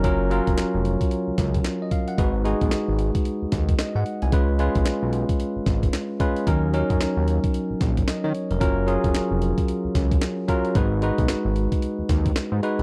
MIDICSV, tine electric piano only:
0, 0, Header, 1, 2, 480
1, 0, Start_track
1, 0, Tempo, 535714
1, 37, Time_signature, 4, 2, 24, 8
1, 11495, End_track
2, 0, Start_track
2, 0, Title_t, "Tine electric piano"
2, 0, Program_c, 0, 4
2, 0, Control_c, 0, 64, 127
2, 34, Note_on_c, 0, 54, 92
2, 37, Note_on_c, 0, 61, 77
2, 40, Note_on_c, 0, 65, 78
2, 42, Note_on_c, 0, 70, 94
2, 48, Control_c, 0, 64, 0
2, 197, Control_c, 0, 64, 127
2, 215, Note_off_c, 0, 54, 0
2, 217, Note_off_c, 0, 61, 0
2, 218, Note_off_c, 0, 65, 0
2, 220, Note_off_c, 0, 70, 0
2, 274, Note_on_c, 0, 54, 89
2, 278, Note_on_c, 0, 61, 75
2, 280, Note_on_c, 0, 65, 83
2, 286, Note_on_c, 0, 70, 95
2, 942, Note_off_c, 0, 54, 0
2, 944, Note_off_c, 0, 61, 0
2, 945, Note_off_c, 0, 65, 0
2, 948, Note_off_c, 0, 70, 0
2, 1632, Note_on_c, 0, 75, 62
2, 1716, Note_off_c, 0, 75, 0
2, 1719, Note_on_c, 0, 77, 72
2, 1858, Note_off_c, 0, 77, 0
2, 1865, Note_on_c, 0, 78, 66
2, 1952, Note_on_c, 0, 56, 90
2, 1954, Note_on_c, 0, 63, 80
2, 1959, Note_on_c, 0, 66, 80
2, 1960, Note_on_c, 0, 71, 94
2, 1966, Control_c, 0, 64, 0
2, 2092, Note_off_c, 0, 78, 0
2, 2126, Control_c, 0, 64, 127
2, 2134, Note_off_c, 0, 56, 0
2, 2136, Note_off_c, 0, 63, 0
2, 2138, Note_off_c, 0, 66, 0
2, 2139, Note_off_c, 0, 71, 0
2, 2190, Note_on_c, 0, 56, 82
2, 2195, Note_on_c, 0, 63, 81
2, 2196, Note_on_c, 0, 66, 77
2, 2202, Note_on_c, 0, 68, 93
2, 2860, Note_off_c, 0, 56, 0
2, 2863, Note_off_c, 0, 63, 0
2, 2863, Note_off_c, 0, 66, 0
2, 2866, Note_off_c, 0, 68, 0
2, 3396, Note_on_c, 0, 75, 66
2, 3536, Note_off_c, 0, 75, 0
2, 3547, Note_on_c, 0, 78, 67
2, 3773, Note_off_c, 0, 78, 0
2, 3784, Note_on_c, 0, 80, 64
2, 3872, Note_on_c, 0, 56, 84
2, 3875, Note_on_c, 0, 61, 83
2, 3878, Note_on_c, 0, 65, 81
2, 3882, Note_on_c, 0, 71, 105
2, 3889, Control_c, 0, 64, 0
2, 4012, Note_off_c, 0, 80, 0
2, 4051, Control_c, 0, 64, 127
2, 4055, Note_off_c, 0, 56, 0
2, 4056, Note_off_c, 0, 61, 0
2, 4058, Note_off_c, 0, 65, 0
2, 4060, Note_off_c, 0, 71, 0
2, 4111, Note_on_c, 0, 56, 89
2, 4117, Note_on_c, 0, 61, 77
2, 4120, Note_on_c, 0, 65, 81
2, 4123, Note_on_c, 0, 71, 95
2, 4780, Note_off_c, 0, 56, 0
2, 4784, Note_off_c, 0, 61, 0
2, 4785, Note_off_c, 0, 65, 0
2, 4786, Note_off_c, 0, 71, 0
2, 5552, Note_on_c, 0, 56, 88
2, 5555, Note_on_c, 0, 61, 86
2, 5559, Note_on_c, 0, 65, 87
2, 5563, Note_on_c, 0, 71, 97
2, 5734, Note_off_c, 0, 56, 0
2, 5736, Note_off_c, 0, 61, 0
2, 5738, Note_off_c, 0, 65, 0
2, 5740, Note_off_c, 0, 71, 0
2, 5795, Note_on_c, 0, 54, 92
2, 5798, Note_on_c, 0, 61, 80
2, 5801, Note_on_c, 0, 63, 80
2, 5806, Note_on_c, 0, 70, 104
2, 5810, Control_c, 0, 64, 0
2, 5941, Control_c, 0, 64, 127
2, 5976, Note_off_c, 0, 54, 0
2, 5977, Note_off_c, 0, 61, 0
2, 5979, Note_off_c, 0, 63, 0
2, 5981, Note_off_c, 0, 70, 0
2, 6035, Note_on_c, 0, 54, 87
2, 6037, Note_on_c, 0, 61, 81
2, 6042, Note_on_c, 0, 63, 75
2, 6043, Note_on_c, 0, 70, 88
2, 6703, Note_off_c, 0, 54, 0
2, 6704, Note_off_c, 0, 61, 0
2, 6706, Note_off_c, 0, 63, 0
2, 6706, Note_off_c, 0, 70, 0
2, 7243, Note_on_c, 0, 75, 63
2, 7380, Note_off_c, 0, 75, 0
2, 7387, Note_on_c, 0, 73, 66
2, 7614, Note_off_c, 0, 73, 0
2, 7623, Note_on_c, 0, 70, 66
2, 7706, Note_off_c, 0, 70, 0
2, 7709, Note_on_c, 0, 54, 94
2, 7710, Note_on_c, 0, 61, 83
2, 7715, Note_on_c, 0, 65, 78
2, 7716, Note_on_c, 0, 70, 100
2, 7729, Control_c, 0, 64, 0
2, 7863, Control_c, 0, 64, 127
2, 7893, Note_off_c, 0, 54, 0
2, 7893, Note_off_c, 0, 61, 0
2, 7896, Note_off_c, 0, 65, 0
2, 7897, Note_off_c, 0, 70, 0
2, 7946, Note_on_c, 0, 54, 85
2, 7948, Note_on_c, 0, 61, 79
2, 7955, Note_on_c, 0, 65, 74
2, 7955, Note_on_c, 0, 68, 103
2, 8618, Note_off_c, 0, 54, 0
2, 8619, Note_off_c, 0, 61, 0
2, 8623, Note_off_c, 0, 65, 0
2, 8623, Note_off_c, 0, 68, 0
2, 9390, Note_on_c, 0, 54, 98
2, 9393, Note_on_c, 0, 61, 83
2, 9398, Note_on_c, 0, 65, 81
2, 9401, Note_on_c, 0, 70, 102
2, 9574, Note_off_c, 0, 54, 0
2, 9575, Note_off_c, 0, 61, 0
2, 9577, Note_off_c, 0, 65, 0
2, 9579, Note_off_c, 0, 70, 0
2, 9634, Note_on_c, 0, 56, 91
2, 9637, Note_on_c, 0, 63, 83
2, 9640, Note_on_c, 0, 66, 82
2, 9643, Note_on_c, 0, 71, 99
2, 9650, Control_c, 0, 64, 0
2, 9811, Control_c, 0, 64, 127
2, 9816, Note_off_c, 0, 56, 0
2, 9817, Note_off_c, 0, 63, 0
2, 9819, Note_off_c, 0, 66, 0
2, 9820, Note_off_c, 0, 71, 0
2, 9873, Note_on_c, 0, 56, 83
2, 9879, Note_on_c, 0, 63, 80
2, 9883, Note_on_c, 0, 66, 76
2, 9887, Note_on_c, 0, 71, 94
2, 10542, Note_off_c, 0, 56, 0
2, 10545, Note_off_c, 0, 63, 0
2, 10546, Note_off_c, 0, 66, 0
2, 10548, Note_off_c, 0, 71, 0
2, 11313, Note_on_c, 0, 56, 92
2, 11317, Note_on_c, 0, 63, 81
2, 11319, Note_on_c, 0, 66, 83
2, 11323, Note_on_c, 0, 71, 102
2, 11495, Note_off_c, 0, 56, 0
2, 11495, Note_off_c, 0, 63, 0
2, 11495, Note_off_c, 0, 66, 0
2, 11495, Note_off_c, 0, 71, 0
2, 11495, End_track
0, 0, End_of_file